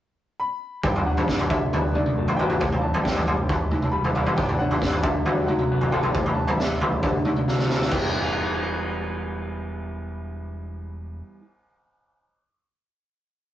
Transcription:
0.40 B5
0.83 G1 G2 G5, kick, floor tom
0.96 floor tom
1.05 G1 D3 F#5
1.17 floor tom
1.28 G1 D3, kick, snare
1.39 floor tom
1.50 D2 D3 E5, kick, floor tom
1.72 D2 B3, floor tom
1.94 D2 D3 D5, mid tom
2.06 mid tom
2.18 F#2 A3
2.28 floor tom
2.37 G1 F#4 G5, floor tom
2.50 floor tom
2.60 A1 A2, kick, floor tom
2.72 floor tom
2.82 A1 E3 A5
2.94 floor tom
3.03 A1 E3 G5, kick, snare
3.16 floor tom
3.27 F#1 G3, floor tom
3.49 E1 E3, kick, floor tom
3.71 E1 E3, mid tom
3.82 A5, mid tom
3.91 E1 G3 B5
4.04 floor tom
4.15 E1 E4, floor tom
4.26 floor tom
4.37 G1 G2 G5, kick, floor tom
4.49 floor tom
4.59 G1 D3 F#5
4.71 floor tom
4.82 G1 D3, kick, snare
4.92 floor tom
5.03 D2 D3 E5, kick, floor tom
5.25 D2 F#4, floor tom
5.41 G5
5.46 D2 F#3 F#5, mid tom
5.59 mid tom
5.71 F#2 B3
5.81 floor tom
5.91 G#1 A4 G5, floor tom
6.03 floor tom
6.14 A1 A2, kick, floor tom
6.26 B5, floor tom
6.34 A1 E3 A5
6.48 floor tom
6.57 A1 E3 E5, snare
6.81 C#2 G3, floor tom
7.03 D2 D3, kick, floor tom
7.25 D2 D3, mid tom
7.36 mid tom
7.48 D2 F#3, snare
7.59 snare
7.70 D2 E4, snare
7.82 snare
7.90 E1 E3 G3 B3 G5, kick, crash
7.94 E4

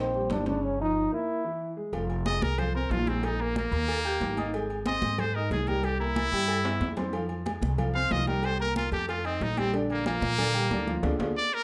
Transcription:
Already playing: A#1
0.00 C4
0.14 G3 G4, high bongo, high conga
0.30 G1 D4, high bongo, low bongo, high conga, high timbale, low timbale
0.46 C#3 C#4 D4, high conga, high timbale
0.64 C#4
0.79 F3 D#4 F4
1.12 A#3 E4 A#4
1.44 E3 E4
1.77 G#3 G#4
1.93 F1 F3 F4 F5, cowbell, high conga, low agogo
2.10 high conga, low agogo
2.26 G#3 G#4 D#5 G#5, cowbell, high conga, low timbale, low agogo
2.42 C2 A#4, cowbell, high conga
2.58 F3 F4 C5 F5, cowbell, high conga, low conga, low agogo
2.75 C4 A#4 C5 C6, high conga
2.90 A#1 F3 F4 F5, cowbell, high conga, low timbale, low agogo
3.07 G#3 C4 G#4 G#5, high conga, low agogo
3.23 D#4, cowbell, low agogo
3.39 A#3 A#4 A#5, high conga
3.56 A#3, cowbell, high conga, low timbale, low agogo
3.72 D#2 A#3 A#4 A#5, cowbell, low agogo
3.88 cowbell, high conga, low agogo
4.05 G4 G5 G6, high conga, low agogo
4.20 G#1, cowbell, high conga, low timbale
4.37 D#4 D#5 D#6, cowbell, high conga, low agogo
4.53 G#3 G#4 G#5, cowbell, high conga, low agogo
4.70 high conga, low agogo
4.86 C4 C5 D#5 C6, cowbell, high conga, low timbale, low agogo
5.02 G#2, cowbell, high conga
5.18 G#3 G#4 C5 G#5, cowbell, high conga, low conga, low agogo
5.35 D#4 A#4 D#5 D#6, high conga
5.50 C2 G#3 G#4 G#5, cowbell, high conga, low timbale, low agogo
5.67 G3 G4 A#4 G5, high conga, low agogo
5.83 G4, cowbell, high conga, low agogo
6.00 A#3 E4 A#4 A#5, high conga
6.16 cowbell, high conga, low timbale, low agogo
6.32 G2 G3 G4 G5, cowbell, high conga, low agogo
6.48 cowbell, high conga, low agogo
6.65 E4 E5 E6, high conga, high timbale, low agogo
6.80 F2, cowbell, high conga, high timbale
6.97 C4 C5 C6, cowbell, high conga, low timbale, low agogo
7.13 F3 F4 F5, cowbell, high conga, low agogo
7.29 high conga, low agogo
7.46 G#3 G#4 G#5, cowbell, high conga, low timbale, low agogo
7.61 C2, cowbell, high conga
7.78 F3 F4 F5, cowbell, high conga, low conga, low agogo
7.95 C4 C5 F5 C6, high conga
8.11 C2 F3 F4 D#5 F5, cowbell, high conga, low timbale, low agogo
8.27 G3 G4 A#4 G5, high conga, low agogo
8.43 C5, cowbell, high conga, low agogo
8.60 A#3 A#4 A#5, high conga
8.76 F4, cowbell, high conga, low timbale, low agogo
8.92 F2 A3 G4 A4 A5, cowbell, high conga, low agogo
9.09 F4, cowbell, high conga, low agogo
9.25 C4 D#4 D#5 D#6, high conga, low agogo
9.41 A#1 D#4, cowbell, high conga, low timbale
9.57 G3 C4 G4 G5, cowbell, high conga, low agogo
9.74 D3 D4 D5, cowbell, high conga, low agogo
9.90 A#3, high conga, low agogo
10.06 F3 A#3 F4 F5, cowbell, high conga, low timbale, low agogo
10.21 A#2, cowbell, high conga
10.38 D3 D4 D5, cowbell, high conga, low conga, low agogo
10.54 G3 G4 G5, high conga
10.70 D2 D3 D4 D5, cowbell, high conga, low timbale, low agogo
10.87 F3 F4 F5, high conga, low agogo
11.02 D2 D4 F4 G#4, cowbell, high conga, high timbale
11.19 D2 D4 F4 G#4, cowbell, high conga, high timbale
11.37 D5
11.54 A#4

